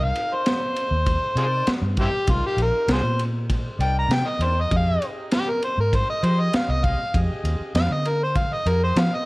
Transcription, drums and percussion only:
0.15 ride medium
0.46 snare loud
0.46 ride medium
0.76 ride medium
1.06 kick medium
1.06 ride medium
1.37 ride medium
1.67 snare loud
1.67 ride medium
1.97 kick medium
1.97 ride medium
2.27 kick loud
2.27 ride medium
2.58 ride medium
2.88 snare loud
2.88 ride medium
3.19 ride medium
3.50 kick medium
3.50 ride medium
3.80 ride medium
4.11 snare loud
4.11 ride medium
4.41 ride medium
4.71 kick loud
4.71 ride medium
5.02 ride soft
5.31 snare loud
5.31 ride medium
5.62 ride medium
5.93 kick medium
5.93 ride medium
6.23 ride medium
6.53 snare loud
6.53 ride medium
6.84 kick medium
6.84 ride medium
7.14 kick loud
7.14 ride medium
7.45 ride medium
7.75 snare loud
7.75 ride medium
8.05 ride medium
8.35 kick medium
8.35 ride medium
8.66 ride medium
8.96 snare loud
8.96 ride medium

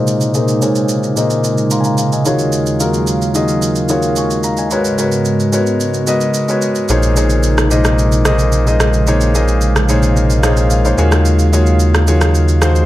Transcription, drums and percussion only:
0.07 shaker medium
0.21 shaker soft
0.34 shaker medium
0.48 shaker medium
0.62 shaker medium
0.75 shaker medium
0.89 shaker medium
1.03 shaker soft
1.17 shaker medium
1.30 shaker medium
1.44 shaker medium
1.58 shaker medium
1.71 shaker medium
1.84 shaker medium
1.98 shaker medium
2.12 shaker medium
2.25 shaker medium
2.39 shaker soft
2.52 shaker medium
2.66 shaker medium
2.80 shaker medium
2.94 shaker medium
3.07 shaker medium
3.22 shaker soft
3.35 shaker medium
3.48 shaker medium
3.62 shaker medium
3.76 shaker medium
3.89 shaker medium
4.02 shaker soft
4.16 shaker medium
4.30 shaker soft
4.44 shaker medium
4.57 shaker soft
4.71 shaker medium
4.85 shaker medium
4.98 shaker medium
5.12 shaker soft
5.25 shaker medium
5.40 shaker soft
5.53 shaker medium
5.66 shaker soft
5.80 shaker medium
5.94 shaker medium
6.07 shaker loud
6.21 shaker medium
6.34 shaker medium
6.49 shaker medium
6.62 shaker medium
6.75 shaker soft
6.89 shaker medium
7.03 shaker medium
7.16 shaker medium
7.30 shaker medium
7.43 shaker medium
7.58 cross-stick medium
7.58 shaker soft
7.71 shaker medium
7.84 cross-stick medium
7.84 shaker medium
7.99 shaker medium
8.12 shaker medium
8.25 cross-stick loud
8.25 shaker medium
8.39 shaker medium
8.52 shaker medium
8.67 shaker soft
8.80 cross-stick loud
8.80 shaker medium
8.93 shaker soft
9.07 shaker medium
9.21 shaker medium
9.35 shaker medium
9.48 shaker medium
9.61 shaker medium
9.76 cross-stick medium
9.76 shaker soft
9.89 shaker medium
10.03 shaker medium
10.17 shaker medium
10.30 shaker medium
10.43 cross-stick medium
10.43 shaker medium
10.57 shaker medium
10.70 shaker medium
10.85 shaker medium
10.98 shaker medium
11.12 cross-stick medium
11.12 shaker soft
11.25 shaker medium
11.39 shaker medium
11.53 shaker medium
11.66 shaker soft
11.80 shaker medium
11.94 cross-stick medium
11.94 shaker soft
12.07 shaker medium
12.21 cross-stick medium
12.21 shaker medium
12.35 shaker medium
12.48 shaker medium
12.62 cross-stick loud
12.62 shaker medium
12.75 shaker medium

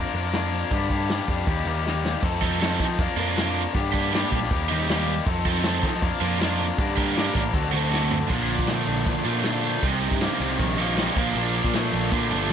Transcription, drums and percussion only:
0.15 open hi-hat soft
0.33 snare medium
0.33 open hi-hat medium
0.53 open hi-hat medium
0.71 kick loud
0.71 open hi-hat medium
0.90 kick medium
0.90 open hi-hat soft
1.09 snare loud
1.09 open hi-hat medium
1.28 kick medium
1.28 open hi-hat soft
1.47 kick loud
1.47 open hi-hat medium
1.66 open hi-hat soft
1.87 snare medium
2.05 snare medium
2.23 kick loud
2.23 open hi-hat medium
2.42 kick medium
2.42 open hi-hat soft
2.62 snare loud
2.62 open hi-hat medium
2.80 kick medium
2.80 open hi-hat medium
2.99 kick loud
2.99 open hi-hat medium
3.18 open hi-hat soft
3.37 snare loud
3.37 open hi-hat medium
3.57 open hi-hat medium
3.75 kick loud
3.75 open hi-hat medium
3.94 kick medium
3.94 open hi-hat soft
4.14 snare loud
4.14 open hi-hat medium
4.32 kick medium
4.32 open hi-hat soft
4.43 snare soft
4.51 kick loud
4.51 open hi-hat medium
4.71 open hi-hat soft
4.89 snare loud
4.89 open hi-hat medium
5.09 open hi-hat medium
5.27 kick loud
5.27 open hi-hat medium
5.45 kick medium
5.45 open hi-hat medium
5.63 snare loud
5.63 open hi-hat medium
5.83 kick medium
5.83 open hi-hat medium
5.94 snare soft
6.02 kick loud
6.02 open hi-hat medium
6.22 open hi-hat medium
6.41 snare loud
6.41 open hi-hat medium
6.60 open hi-hat medium
6.79 kick loud
6.79 open hi-hat medium
6.97 kick medium
6.97 open hi-hat medium
7.17 snare loud
7.17 open hi-hat medium
7.35 kick medium
7.35 open hi-hat medium
7.54 kick loud
7.54 open hi-hat medium
7.73 open hi-hat medium
7.94 snare medium
8.11 floor tom medium
8.30 kick loud
8.30 crash loud
8.49 ride medium
8.59 kick medium
8.67 snare medium
8.67 ride medium
8.87 ride medium
9.06 kick loud
9.06 ride medium
9.26 ride medium
9.43 snare medium
9.43 ride medium
9.64 ride medium
9.83 kick loud
9.83 ride medium
10.02 ride medium
10.12 kick medium
10.21 snare loud
10.21 ride medium
10.41 ride medium
10.59 kick loud
10.59 ride medium
10.78 ride medium
10.97 snare loud
10.97 ride medium
11.16 kick loud
11.16 ride medium
11.35 ride loud
11.55 ride medium
11.65 kick medium
11.73 snare loud
11.73 ride medium
11.93 ride medium
12.12 kick loud
12.12 ride medium
12.31 ride medium
12.49 ride medium

